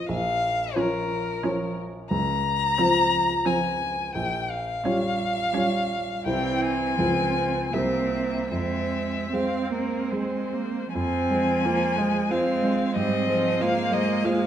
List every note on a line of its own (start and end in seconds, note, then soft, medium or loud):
0.00 0.12 A1 soft
0.00 0.12 F3 soft
0.00 0.13 F4 soft
0.00 0.12 C5 soft
0.09 0.75 A#1 soft
0.09 0.79 F5 medium
0.76 1.40 F3 soft
0.76 1.28 F3 medium
0.76 1.28 C#4 soft
0.76 1.41 F4 soft
0.76 1.79 A#4 medium
0.76 1.41 C#5 soft
1.43 1.94 F3 medium
1.43 2.08 F3 soft
1.43 1.95 C#4 medium
1.43 2.08 F4 soft
1.43 2.08 C#5 soft
2.11 2.77 C#2 medium
2.11 3.48 A#5 medium
2.78 3.29 F3 medium
2.78 3.42 F3 soft
2.78 3.29 C4 medium
2.78 3.42 F4 soft
2.78 3.42 C5 soft
3.45 3.96 F3 soft
3.45 4.11 F3 soft
3.45 3.97 C4 medium
3.45 4.11 F4 soft
3.45 4.11 C5 soft
3.45 4.14 G#5 medium
4.15 4.83 A#1 soft
4.15 4.52 G5 medium
4.50 6.26 F5 medium
4.84 5.37 G3 soft
4.84 5.51 G3 soft
4.84 5.38 C#4 medium
4.84 5.52 F4 soft
4.84 5.52 C#5 soft
5.53 6.06 G3 soft
5.53 6.22 G3 soft
5.53 6.07 C#4 soft
5.53 6.22 F4 soft
5.57 6.22 C#5 soft
6.25 6.96 C2 soft
6.25 6.98 E3 soft
6.25 6.94 G3 soft
6.25 6.95 C4 soft
6.25 6.95 E4 soft
6.25 6.95 C5 soft
6.25 6.63 G5 medium
6.62 7.75 G#5 medium
6.96 7.71 C#2 soft
6.96 7.71 F3 soft
6.96 7.69 F3 soft
6.96 7.71 C4 soft
6.96 7.69 F4 soft
6.96 7.69 C5 soft
7.71 8.49 C2 soft
7.71 8.51 A#3 soft
7.71 8.47 A#3 soft
7.71 8.49 C4 soft
7.71 8.47 G4 soft
7.71 8.48 C5 soft
7.71 8.50 E5 soft
8.50 9.30 F2 soft
8.50 9.31 G#3 soft
8.50 9.31 C4 soft
8.50 9.35 E5 soft
9.32 10.08 G#3 soft
9.32 9.71 C4 soft
9.32 10.70 C4 soft
9.32 10.08 G#4 soft
9.32 10.08 C5 soft
9.32 9.71 F5 soft
9.70 10.12 A#3 soft
9.70 10.13 A#4 soft
10.10 10.55 G#3 soft
10.10 10.91 G#3 soft
10.10 10.91 G#4 soft
10.10 10.93 C5 soft
10.10 10.92 C5 soft
10.53 10.93 A#3 soft
10.94 12.92 F2 soft
10.94 12.26 F3 soft
10.94 11.67 C4 soft
10.94 12.33 G#5 medium
11.31 11.62 G#3 soft
11.31 11.62 C5 soft
11.65 12.00 A#3 soft
11.65 11.95 F4 soft
11.65 11.95 C5 soft
11.98 12.27 G#3 soft
11.98 12.32 G#3 soft
11.98 12.28 C5 soft
12.30 12.97 G#3 soft
12.30 12.96 C4 soft
12.30 12.60 F4 soft
12.30 12.60 C5 soft
12.30 12.96 F5 medium
12.63 12.92 G#3 soft
12.63 12.93 C5 soft
12.95 14.47 G#2 soft
12.95 13.28 G3 soft
12.95 13.63 C4 soft
12.95 13.63 D#5 medium
13.29 13.64 F3 medium
13.29 13.58 G#3 soft
13.29 13.58 C5 soft
13.60 14.27 G#3 soft
13.60 14.27 A#3 soft
13.60 13.89 F4 soft
13.60 13.89 C5 soft
13.60 13.95 F5 medium
13.91 14.21 G#3 soft
13.91 14.22 C5 soft
13.91 14.27 D#5 medium
14.24 14.47 G#3 medium
14.24 14.47 A#3 soft
14.24 14.47 F4 soft
14.24 14.47 C5 soft
14.24 14.47 F5 medium